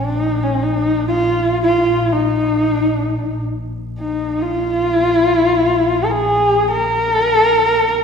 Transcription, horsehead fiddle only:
Already playing: D#4
0.43 C#4
0.63 D#4
1.08 F4
1.63 F4
2.13 D#4
3.99 D#4
4.42 F4
6.04 A#4
6.11 G#4
6.71 A#4

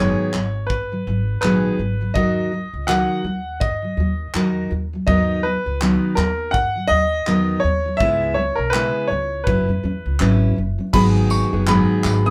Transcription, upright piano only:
Already playing: C#5
0.67 B4
1.41 B4
2.14 D#5
2.87 F#5
3.60 D#5
5.07 D#5
5.43 B4
6.15 A#4
6.51 F#5
6.88 D#5
7.60 C#5
7.97 E5
8.34 C#5
8.55 A#4
8.70 B4
9.08 C#5
9.44 B4
10.93 B5
11.31 C#6
11.68 B5
12.26 D#6

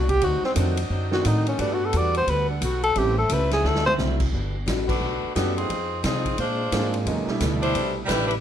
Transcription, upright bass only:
Already playing: C2
0.22 D2
0.42 muted upright bass stroke
0.56 F2
0.90 F#2
1.25 A2
1.59 G2
1.93 E2
2.27 D2
2.61 B1
2.96 A1
3.30 C#2
3.64 D2
3.98 C2
4.32 G1
4.67 A1
5.00 B1
5.24 muted upright bass stroke
5.36 F#2
5.70 F2
6.04 C3
6.38 A#2
6.72 G#2
7.06 E2
7.27 muted upright bass stroke
7.40 D2
7.75 B1
8.09 A1

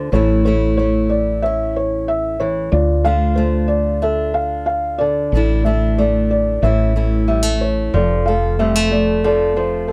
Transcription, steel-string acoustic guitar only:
Already playing: D2 D3 A3
0.12 A2 E3 A3 C#4 E4
0.46 A3 E4
0.79 A3
1.46 C#4
2.40 E3
2.73 D2
3.05 A3 D4 F4
3.38 A3
4.02 D4
5.01 D3
5.33 A2 D3 A3 D4 E4
5.66 A3 D4 E4
5.98 A3
6.63 A2 E3 A3 C#4 E4
6.96 A3 C#4 E4
7.28 G3
7.43 A3
7.94 F2
8.28 A3 A4
8.60 G3
8.76 A3
9.24 A4

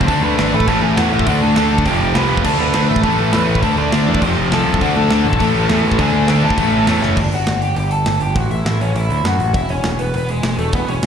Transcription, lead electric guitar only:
0.07 A4 A5
0.22 B4 B5
0.53 B4 B5
0.67 A4 A5
0.82 G#4 G#5
0.96 F#4 F#5
1.13 E4 E5
1.27 F#4 F#5
1.41 A4 A5
1.86 G4 G5
2.15 B4 B5
2.44 A4 A5
2.59 B4 B5
2.88 B4 B5
3.02 A4 A5
3.32 B4 B5
3.63 A4 A5
3.77 D5 D6
4.07 D5 D6
4.22 C5 C6
4.52 A4 A5
4.81 F#4 F#5
4.96 A4 A5
5.26 A4 A5
6.00 G#4 G#5
6.43 A4 A5
6.88 C#4 C#5
7.17 D4 D5
7.33 F#4 F#5
7.62 G4 G5
7.76 G4 G5
7.91 A4 A5
8.21 G4 G5
8.35 F#4 F#5
8.51 E4 E5
8.81 C#4 C#5
8.96 E4 E5
9.26 F#4 F#5
9.54 E4 E5
9.69 C#4 C#5
9.99 B3 B4
10.15 B3 B4
10.30 G#3 G#4
10.58 A3 A4
10.73 B3 B4
10.88 C#4 C#5

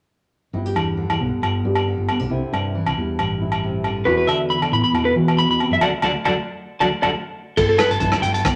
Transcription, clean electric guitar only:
4.05 B4
4.17 B4
4.27 E5
4.50 B5
4.73 B5
4.84 B5
5.05 B4
5.39 B5
5.51 B5
5.73 E5
5.82 D5 F#5 A5
6.04 D5 F#5 A5
6.25 D5 F#5 A5
6.80 D5 F#5 A5
7.02 D5 F#5 A5
7.57 A4
7.69 A4
7.79 B4
7.91 A5
8.00 A5
8.22 G5
8.34 A5

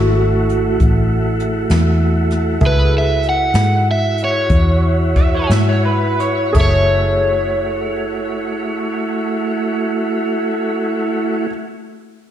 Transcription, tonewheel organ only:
Already playing: A3 E4 F#4
2.62 E4 F#4
6.54 A3 E4 F#4

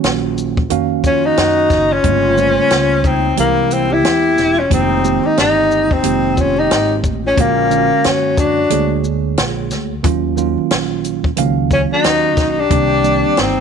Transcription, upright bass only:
0.04 A#1
0.71 F2
1.37 F#2
1.70 F#1
2.04 G1
2.57 muted upright bass stroke
2.71 C#2
3.38 C2
4.04 E2
4.38 E1
4.71 F1
5.25 muted upright bass stroke
5.38 G1
6.05 F1
6.71 G#1
7.04 A1
7.38 A#1
7.91 muted upright bass stroke
8.05 F#2
8.71 D2
9.38 A#1
9.71 D2
10.04 D#2
10.57 muted upright bass stroke
10.71 A#1
11.38 C#2
12.05 D#2
12.37 B1
12.71 C2
13.25 muted upright bass stroke
13.38 G1

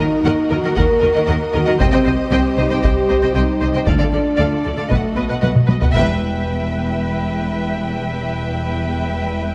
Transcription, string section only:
Already playing: A#3 F#4 A#4 D#5
1.81 G3 G4 C5
3.89 A3 F4 A4 D5
4.92 F#4 D#5

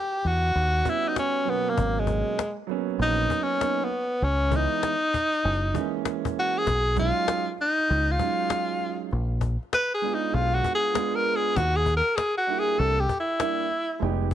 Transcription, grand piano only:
0.84 G3 B3 C#4 F#4
1.45 B2 F#3 A#3 C#4
2.67 F#3 A#3 B3
2.71 C#4
3.59 F#3 A#3 B3 D#4
4.51 E3 G#3 B3
4.55 D#4
5.74 E3 G#3 A#3
5.78 C#4
6.95 F#3 G#3 C#4 D#4
8.18 F#3 G#3 C#4 D#4
10.02 G#3 B3 D4 F4
10.94 G#3 B3 D4 F4
12.47 G3 A#3 D4 E4
13.39 G3 A#3 D4 E4
14.00 G#3 B3 D#4 G4

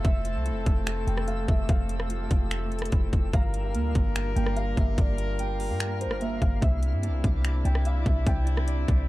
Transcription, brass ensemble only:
Already playing: A3 C4 A4
3.33 G3 D4 F4 A#4
6.62 C3 C4 D4 E4

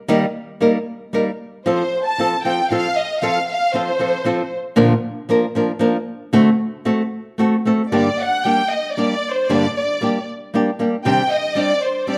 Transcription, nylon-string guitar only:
0.08 D#3 G3 A#3 D#4 A#4
0.61 G3 A#3 D#4 A#4
1.13 G3 A#3 D#4 A#4
1.66 F3 C4 F4 A4
2.18 F3 C4 F4 A4
2.45 F3 C4 F4 A4
2.70 F3 C4 F4 A4
3.22 F3 C4 F4 A4
3.74 F3 C4 F4 A4
3.99 F3 C4 F4 A4
4.25 F3 C4 F4 A4
4.76 A#2 D3 F3 A#3 D4 A#4
5.29 F3 A#3 D4 A#4
5.55 F3 A#3 D4 A#4
5.79 F3 A#3 D4 A#4
6.33 D3 A3 C4 F#4 A4
6.85 A3 C4 F#4 A4
7.38 A3 C4 F#4 A4
7.65 A3 C4 F#4 A4
7.92 G2 D3 G3 A#3 D4 G4
8.45 G3 A#3 D4 G4
8.97 G3 A#3 D4 G4
9.50 G2 D3 G3 A#3 D4 G4
10.01 G3 A#3 D4 G4
10.54 G3 A#3 D4 G4
10.79 G3 A#3 D4 G4
11.05 C3 D#3 G3 C4 D4 G4
11.55 G3 C4 D4 G4
12.07 G3 C4 D4 G4

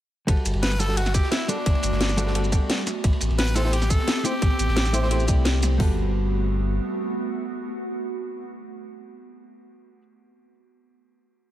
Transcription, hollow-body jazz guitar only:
0.27 G3 F#4 A4 B4
0.79 G3 F#4 A4 B4
0.88 G3 F#4 A4 B4
1.48 G3 F#4 A4 B4
2.17 G3 F#4 A4 B4
2.26 G3 F#4 A4 B4
2.35 G3 F#4 A4 B4
2.52 G3 F#4 A4 D5
3.55 A3 E4 G4 C5
3.64 A3 E4 G4 C5
4.24 A3 E4 G4 C5
4.93 A3 E4 G4 C5
5.02 A3 E4 G4 C5
5.10 A3 E4 G4 C5
5.27 A3 E4 G4 D5
5.78 G3 F#4 A4 B4

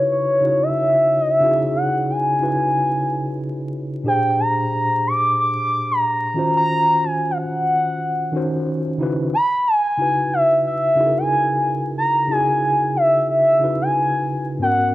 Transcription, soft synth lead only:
Already playing: C#5
0.11 C#5
0.62 E5
1.20 D#5
1.30 E5
1.76 F#5
2.10 G#5
4.07 G5
4.40 A#5
5.07 D6
5.40 D6
5.91 A#5
6.57 A#5
7.05 G#5
7.31 F5
7.38 F#5
9.34 B5
9.67 G#5
10.33 E5
10.67 E5
11.18 G#5
11.98 A#5
12.31 G#5
12.96 E5
13.30 E5
13.82 G#5
14.62 F#5

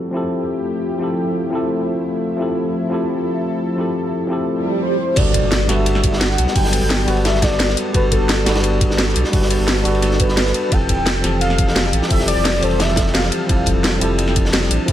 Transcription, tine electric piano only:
Already playing: F3 C4 E4 G4 A4
0.11 F3 C4 E4 G4
0.17 A4
0.98 F3 C4 E4 G4
1.03 A4
1.50 F3 C4 E4 G4
1.55 A4
2.37 F3 C4 E4 G4
2.42 A4
2.89 F3 C4 E4 G4
2.94 A4
3.76 F3 C4 E4 G4
3.81 A4
4.27 F3 C4 E4
4.31 G4 A4
5.14 G3 D4 F#4 A4
5.19 B4
5.66 G3 D4 F#4 A4
5.72 B4
6.53 F#3 G3 D4 A4
6.58 B4
7.05 G3 D4 F#4 A4
7.10 B4
7.92 G3 D4 F#4 A4
7.97 B4
8.44 G3 D4 F#4 A4
8.49 B4
9.30 G3 D4 F#4
9.34 A4 B4
9.82 G3 D4 F#4 A4
9.88 B4
10.69 F3 C4 E4 G4
10.74 A4
11.21 E3 F3 C4 G4
11.26 A4
12.08 F3 C4 E4 G4
12.13 A4
12.60 E3 F3 C4 G4
12.65 A4
13.47 F3 C4 E4
13.51 G4 A4
13.99 F3 C4 E4 G4
14.04 A4
14.86 F3 C4 E4

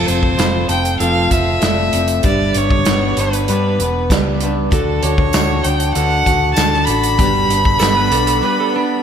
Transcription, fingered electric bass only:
0.08 F1
0.38 F1
0.69 F1
1.00 F1
1.31 F1
1.62 F1
1.93 F1
2.24 G1
2.55 G1
2.87 G1
3.17 G1
3.49 G2
3.79 E1
4.11 C#2
4.72 D2
5.03 D2
5.35 D2
5.65 D2
5.96 D2
6.26 D2
6.57 D2
6.88 A1
7.19 G1
7.49 G1
7.81 G1
8.11 B1

